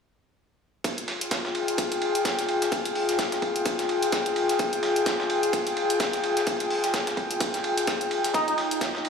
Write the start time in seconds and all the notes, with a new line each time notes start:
0.84 F4, kick, closed hi-hat, ride
0.98 closed hi-hat
1.08 G#4, snare, ride
1.15 G5
1.21 closed hi-hat
1.31 kick, snare, closed hi-hat, ride
1.45 snare
1.55 ride
1.68 closed hi-hat
1.78 kick, closed hi-hat, ride
1.92 closed hi-hat, ride
2.02 ride
2.15 closed hi-hat
2.25 kick, snare, closed hi-hat, ride
2.39 snare, closed hi-hat
2.49 ride
2.62 snare, closed hi-hat
2.72 kick, closed hi-hat, ride
2.85 closed hi-hat, ride
2.95 open hi-hat
3.09 snare, closed hi-hat
3.19 kick, snare, closed hi-hat, ride
3.32 snare, closed hi-hat
3.42 kick, ride
3.56 closed hi-hat
3.66 kick, closed hi-hat, ride
3.79 snare, closed hi-hat
3.89 ride
4.02 closed hi-hat, ride
4.12 kick, snare, closed hi-hat, ride
4.26 closed hi-hat
4.36 ride
4.49 snare, closed hi-hat
4.59 kick, closed hi-hat, ride
4.73 closed hi-hat
4.83 snare, ride
4.96 closed hi-hat
5.06 kick, snare, closed hi-hat, ride
5.20 snare
5.30 ride
5.43 closed hi-hat
5.53 kick, closed hi-hat, ride
5.67 closed hi-hat, ride
5.77 ride
5.90 closed hi-hat
6.00 kick, snare, closed hi-hat, ride
6.13 snare, closed hi-hat
6.24 ride
6.37 snare, closed hi-hat
6.47 kick, closed hi-hat, ride
6.60 closed hi-hat, ride
6.70 open hi-hat
6.84 snare, closed hi-hat
6.94 kick, snare, closed hi-hat, ride
7.07 snare, closed hi-hat
7.17 kick, ride
7.31 closed hi-hat
7.40 kick, closed hi-hat, ride
7.54 snare, closed hi-hat
7.64 ride
7.78 closed hi-hat, ride
7.87 kick, snare, closed hi-hat, ride
8.01 closed hi-hat
8.11 ride
8.24 snare, closed hi-hat
8.34 D#4, kick, closed hi-hat, ride
8.48 D#4, closed hi-hat
8.58 snare, ride
8.71 closed hi-hat
8.81 kick, snare, closed hi-hat, ride
8.95 snare
8.99 C5 A#5
9.05 ride